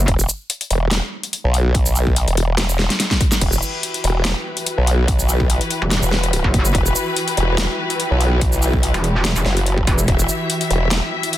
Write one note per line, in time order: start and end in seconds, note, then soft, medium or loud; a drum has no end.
0.08 0.27 E1 loud
0.08 kick loud
0.08 closed hi-hat medium
0.19 shaker medium
0.29 shaker medium
0.50 closed hi-hat medium
0.61 closed hi-hat medium
0.71 1.01 E1 loud
0.71 closed hi-hat medium
0.91 snare loud
0.91 closed hi-hat medium
1.23 closed hi-hat medium
1.33 closed hi-hat medium
1.44 2.26 B1 loud
1.54 closed hi-hat medium
1.75 kick loud
1.75 closed hi-hat medium
1.86 shaker medium
1.96 shaker medium
2.07 kick medium
2.16 closed hi-hat medium
2.28 2.88 E1 medium
2.28 closed hi-hat medium
2.37 closed hi-hat medium
2.58 snare loud
2.58 closed hi-hat medium
2.69 shaker medium
2.79 snare medium
2.90 snare medium
2.90 closed hi-hat medium
3.00 snare medium
3.00 closed hi-hat medium
3.11 kick medium
3.11 snare medium
3.21 kick loud
3.21 closed hi-hat medium
3.32 snare medium
3.32 shaker medium
3.41 3.61 E1 loud
3.41 11.38 E3 medium
3.41 11.38 E4 medium
3.41 11.38 F#4 medium
3.41 11.38 G4 medium
3.41 10.06 B4 loud
3.41 kick loud
3.41 closed hi-hat medium
3.41 crash medium
3.53 shaker medium
3.62 shaker medium
3.83 closed hi-hat medium
3.94 closed hi-hat medium
4.04 4.34 E1 loud
4.04 closed hi-hat medium
4.25 snare loud
4.25 closed hi-hat medium
4.57 closed hi-hat medium
4.66 closed hi-hat medium
4.78 5.59 B1 loud
4.87 closed hi-hat medium
5.08 kick loud
5.08 closed hi-hat medium
5.19 shaker medium
5.29 shaker medium
5.40 kick medium
5.50 closed hi-hat medium
5.61 closed hi-hat medium
5.71 closed hi-hat medium
5.82 6.01 E1 loud
5.91 snare loud
5.91 closed hi-hat medium
6.03 6.43 E1 loud
6.03 shaker medium
6.12 snare medium
6.24 closed hi-hat medium
6.33 closed hi-hat medium
6.44 6.73 F#1 loud
6.44 kick medium
6.54 kick loud
6.54 closed hi-hat medium
6.65 shaker medium
6.75 6.94 E1 medium
6.75 kick loud
6.75 closed hi-hat medium
6.86 shaker medium
6.96 shaker medium
7.16 closed hi-hat medium
7.28 closed hi-hat medium
7.37 7.68 E1 loud
7.37 closed hi-hat medium
7.58 snare loud
7.58 closed hi-hat medium
7.90 closed hi-hat medium
8.00 closed hi-hat medium
8.11 8.93 B1 loud
8.21 closed hi-hat medium
8.41 kick loud
8.41 closed hi-hat medium
8.53 shaker medium
8.62 shaker medium
8.73 kick medium
8.83 closed hi-hat medium
8.94 9.34 E1 loud
8.94 closed hi-hat medium
9.04 closed hi-hat medium
9.25 snare loud
9.25 closed hi-hat medium
9.36 9.44 E1 loud
9.36 shaker medium
9.46 9.86 F#1 loud
9.46 snare medium
9.57 closed hi-hat medium
9.66 closed hi-hat medium
9.78 kick medium
9.87 10.07 E1 loud
9.87 kick loud
9.87 closed hi-hat medium
9.98 shaker medium
10.08 10.27 E1 loud
10.08 11.38 E5 loud
10.08 kick loud
10.08 closed hi-hat medium
10.19 shaker medium
10.29 shaker medium
10.50 closed hi-hat medium
10.61 closed hi-hat medium
10.71 11.01 E1 loud
10.71 closed hi-hat medium
10.91 snare loud
10.91 closed hi-hat medium
11.23 closed hi-hat medium
11.33 closed hi-hat medium